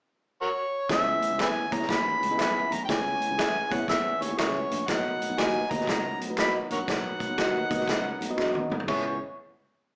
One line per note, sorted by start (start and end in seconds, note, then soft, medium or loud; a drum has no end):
0.42 0.49 F#4 medium
0.42 0.50 A#4 medium
0.42 0.87 C#5 medium
0.89 1.15 C#2 medium
0.89 1.68 C#3 medium
0.89 4.84 E3 medium
0.89 4.84 G#3 medium
0.89 4.84 B3 medium
0.89 1.36 B3 medium
0.89 4.84 C#4 medium
0.89 1.37 E4 medium
0.89 1.37 G#4 medium
0.89 1.37 C#5 medium
0.89 1.37 E5 loud
0.89 kick loud
0.89 snare loud
0.89 closed hi-hat medium
1.20 closed hi-hat medium
1.20 high conga medium
1.30 1.37 C#2 medium
1.38 1.64 E2 medium
1.38 1.58 G#4 medium
1.38 1.59 B4 medium
1.38 1.49 B4 medium
1.38 1.59 E5 medium
1.38 1.48 E5 medium
1.38 1.75 G#5 medium
1.38 finger snap medium
1.38 snare loud
1.38 closed hi-hat medium
1.71 1.85 E2 medium
1.71 2.06 B3 medium
1.71 2.07 E4 medium
1.71 2.07 G#4 medium
1.71 2.07 C#5 medium
1.71 1.92 A#5 medium
1.71 kick medium
1.71 closed hi-hat medium
1.71 high conga medium
1.71 low conga medium
1.80 1.89 G#4 soft
1.80 1.89 B4 soft
1.80 1.88 E5 soft
1.80 snare soft
1.89 2.14 D#2 medium
1.89 2.40 B5 loud
1.89 kick medium
1.89 snare loud
1.89 closed hi-hat medium
2.06 muted conga soft
2.21 2.34 C#2 medium
2.21 closed hi-hat medium
2.21 high conga medium
2.29 2.72 B3 medium
2.29 2.72 E4 medium
2.29 2.72 G#4 medium
2.29 2.35 D#5 medium
2.29 high conga medium
2.37 2.64 B1 medium
2.37 2.58 G#4 medium
2.37 2.59 B4 medium
2.37 2.76 E5 medium
2.37 2.59 E5 medium
2.37 2.49 F#5 medium
2.37 2.47 G#5 medium
2.37 2.74 B5 medium
2.37 finger snap medium
2.37 snare loud
2.37 closed hi-hat medium
2.71 2.84 B1 medium
2.71 2.84 A#5 medium
2.71 closed hi-hat medium
2.71 high conga medium
2.71 low conga medium
2.85 3.36 B3 medium
2.85 2.92 G5 medium
2.85 kick loud
2.85 closed hi-hat medium
2.89 3.14 C#2 medium
2.89 3.68 C#3 medium
2.89 3.36 E4 medium
2.89 3.36 G#4 medium
2.89 3.36 C#5 medium
2.89 3.73 G#5 medium
2.89 snare loud
3.04 muted conga soft
3.21 closed hi-hat medium
3.21 high conga medium
3.31 3.37 C#2 medium
3.38 3.58 G#4 medium
3.38 3.58 B4 medium
3.38 3.59 E5 medium
3.38 finger snap medium
3.38 snare loud
3.38 closed hi-hat medium
3.55 muted fretless electric bass stroke soft
3.55 muted conga soft
3.71 3.85 E2 medium
3.71 4.06 B3 medium
3.71 4.06 E4 medium
3.71 4.06 G#4 medium
3.71 4.06 C#5 medium
3.71 3.88 F#5 medium
3.71 kick medium
3.71 closed hi-hat medium
3.71 high conga medium
3.71 low conga medium
3.79 3.89 G#4 soft
3.79 3.88 B4 medium
3.79 3.88 E5 medium
3.88 4.14 E2 medium
3.88 4.23 E5 medium
3.88 kick medium
3.88 snare loud
3.88 closed hi-hat medium
4.05 muted conga soft
4.21 4.34 D#2 medium
4.21 4.39 C#5 medium
4.21 closed hi-hat medium
4.21 high conga medium
4.28 4.71 B3 medium
4.28 4.71 E4 medium
4.28 4.72 G#4 medium
4.28 4.72 C#5 medium
4.28 high conga medium
4.37 4.63 C#2 medium
4.37 4.48 F#4 medium
4.37 4.58 G#4 loud
4.37 4.46 A#4 medium
4.37 4.58 B4 medium
4.37 4.90 C#5 medium
4.37 4.58 E5 loud
4.37 finger snap loud
4.37 snare loud
4.37 closed hi-hat medium
4.71 4.84 A#1 medium
4.71 closed hi-hat medium
4.71 high conga medium
4.71 low conga medium
4.88 5.13 B1 medium
4.88 5.67 B2 medium
4.88 8.83 D#3 medium
4.88 8.83 F#3 medium
4.88 8.83 B3 medium
4.88 5.35 B3 medium
4.88 5.35 D#4 medium
4.88 8.84 D#4 medium
4.88 5.35 F#4 medium
4.88 4.96 C#5 medium
4.88 5.40 F#5 medium
4.88 kick loud
4.88 snare loud
4.88 closed hi-hat medium
4.95 5.39 D#5 medium
5.05 muted conga soft
5.21 closed hi-hat medium
5.21 high conga medium
5.30 5.36 B1 medium
5.38 5.63 D#2 medium
5.38 5.58 F#4 medium
5.38 5.58 B4 medium
5.38 5.58 D#5 medium
5.38 5.72 G#5 medium
5.38 finger snap medium
5.38 snare loud
5.38 closed hi-hat medium
5.70 5.84 D#2 medium
5.70 6.06 B3 medium
5.70 6.06 D#4 medium
5.70 6.06 F#4 medium
5.70 6.06 D#5 medium
5.70 6.21 A#5 medium
5.70 kick medium
5.70 closed hi-hat medium
5.70 high conga medium
5.70 low conga medium
5.79 5.88 F#4 soft
5.79 5.88 B4 medium
5.79 5.87 D#5 medium
5.79 snare soft
5.87 6.13 C#2 medium
5.87 kick medium
5.87 snare loud
5.87 closed hi-hat medium
6.19 6.58 B1 medium
6.19 closed hi-hat medium
6.19 high conga medium
6.29 6.71 B3 medium
6.29 6.71 D#4 medium
6.29 6.71 F#4 medium
6.29 6.72 B4 medium
6.29 high conga medium
6.37 6.57 F#4 medium
6.37 6.58 B4 medium
6.37 6.58 D#5 loud
6.37 6.54 B5 loud
6.37 finger snap loud
6.37 snare loud
6.37 closed hi-hat medium
6.55 muted conga soft
6.70 6.84 A#1 medium
6.70 6.78 A#4 medium
6.70 6.79 C#5 medium
6.70 8.35 F#5 medium
6.70 closed hi-hat medium
6.70 high conga medium
6.70 low conga medium
6.87 7.13 B1 medium
6.87 7.67 B2 medium
6.87 7.35 B3 medium
6.87 7.35 D#4 medium
6.87 7.35 F#4 medium
6.87 7.35 C#5 medium
6.87 kick loud
6.87 snare loud
6.87 closed hi-hat medium
7.05 muted conga soft
7.20 kick medium
7.20 closed hi-hat medium
7.20 high conga medium
7.30 7.36 B1 medium
7.38 7.63 D#2 medium
7.38 7.58 F#4 medium
7.38 7.58 B4 medium
7.38 7.58 D#5 medium
7.38 finger snap medium
7.38 snare medium
7.38 closed hi-hat medium
7.70 7.84 D#2 medium
7.70 8.05 B3 medium
7.70 8.05 D#4 medium
7.70 8.05 F#4 medium
7.70 8.05 D#5 loud
7.70 kick medium
7.70 closed hi-hat medium
7.70 high conga medium
7.70 low conga medium
7.79 7.88 F#4 soft
7.79 7.88 B4 soft
7.79 7.87 D#5 soft
7.79 snare soft
7.79 high conga soft
7.88 8.13 C#2 medium
7.88 kick medium
7.88 snare loud
7.88 closed hi-hat medium
8.21 8.34 B1 medium
8.21 closed hi-hat medium
8.21 high conga medium
8.28 8.71 B3 medium
8.28 8.71 D#4 medium
8.28 8.71 F#4 medium
8.28 8.72 D#5 medium
8.28 high conga medium
8.37 8.63 A#1 medium
8.37 8.57 F#4 medium
8.37 8.58 B4 medium
8.37 8.58 D#5 loud
8.37 finger snap loud
8.37 snare medium
8.54 high tom medium
8.54 muted conga soft
8.70 8.83 B1 medium
8.70 mid tom medium
8.70 high conga medium
8.70 low conga medium
8.80 floor tom medium
8.80 low conga medium
8.87 9.19 C#2 medium
8.87 9.19 E3 medium
8.87 9.19 G#3 medium
8.87 9.19 B3 medium
8.87 9.19 C#4 medium
8.87 9.18 E4 medium
8.87 9.07 G#4 medium
8.87 9.19 G#4 medium
8.87 9.08 B4 medium
8.87 9.19 C#5 medium
8.87 9.08 E5 medium
8.87 finger snap medium
8.87 kick loud
8.87 crash medium
8.87 high conga medium